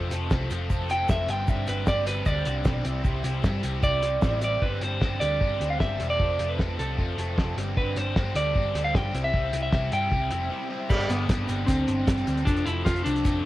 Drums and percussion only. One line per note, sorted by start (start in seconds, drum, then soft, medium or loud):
0.11 closed hi-hat loud
0.11 shaker medium
0.30 kick loud
0.30 snare loud
0.30 shaker medium
0.50 closed hi-hat medium
0.50 shaker medium
0.70 kick medium
0.70 shaker medium
0.89 closed hi-hat medium
0.89 shaker medium
1.09 kick loud
1.09 snare loud
1.09 shaker loud
1.29 closed hi-hat medium
1.48 kick loud
1.48 shaker loud
1.67 closed hi-hat medium
1.67 shaker medium
1.87 kick loud
1.87 snare loud
1.87 shaker loud
2.06 closed hi-hat loud
2.06 shaker medium
2.26 kick loud
2.26 shaker medium
2.46 closed hi-hat medium
2.46 shaker medium
2.65 kick loud
2.65 snare loud
2.65 shaker loud
2.85 closed hi-hat loud
2.85 shaker medium
3.04 kick loud
3.04 shaker medium
3.24 closed hi-hat loud
3.24 shaker medium
3.44 kick loud
3.44 snare loud
3.44 shaker medium
3.63 closed hi-hat medium
3.63 shaker medium
3.83 kick loud
3.83 shaker medium
4.02 closed hi-hat medium
4.02 shaker medium
4.22 kick loud
4.22 snare loud
4.22 shaker medium
4.41 closed hi-hat medium
4.41 shaker medium
4.62 kick medium
4.81 closed hi-hat medium
5.01 kick loud
5.01 snare medium
5.21 closed hi-hat medium
5.41 kick loud
5.61 closed hi-hat medium
5.80 kick loud
5.80 snare loud
6.00 closed hi-hat medium
6.20 kick loud
6.39 closed hi-hat medium
6.59 kick loud
6.59 snare loud
6.79 closed hi-hat medium
6.99 kick medium
7.18 closed hi-hat medium
7.38 kick loud
7.38 snare loud
7.58 closed hi-hat medium
7.77 kick medium
7.96 closed hi-hat medium
8.16 kick loud
8.16 snare loud
8.35 closed hi-hat medium
8.55 kick loud
8.75 closed hi-hat medium
8.95 kick loud
8.95 snare loud
9.14 closed hi-hat medium
9.34 kick loud
9.53 closed hi-hat medium
9.73 kick loud
9.73 snare loud
9.92 closed hi-hat medium
10.12 kick medium
10.31 closed hi-hat medium
10.90 kick loud
10.90 crash loud
10.90 shaker medium
11.00 closed hi-hat soft
11.09 closed hi-hat medium
11.09 shaker medium
11.29 kick loud
11.29 snare loud
11.29 closed hi-hat loud
11.29 shaker medium
11.48 closed hi-hat medium
11.48 shaker medium
11.68 kick loud
11.68 closed hi-hat loud
11.68 shaker medium
11.78 shaker soft
11.88 closed hi-hat medium
11.88 shaker medium
12.08 kick loud
12.08 snare loud
12.08 closed hi-hat loud
12.08 shaker loud
12.18 closed hi-hat soft
12.27 closed hi-hat medium
12.27 shaker medium
12.37 closed hi-hat soft
12.37 shaker soft
12.47 kick loud
12.47 closed hi-hat medium
12.47 shaker medium
12.57 closed hi-hat soft
12.66 closed hi-hat medium
12.66 shaker medium
12.86 kick loud
12.86 snare loud
12.86 closed hi-hat loud
12.86 shaker medium
12.96 closed hi-hat soft
13.06 closed hi-hat medium
13.06 shaker medium
13.16 closed hi-hat soft
13.25 kick loud
13.25 closed hi-hat medium
13.25 shaker medium
13.35 shaker soft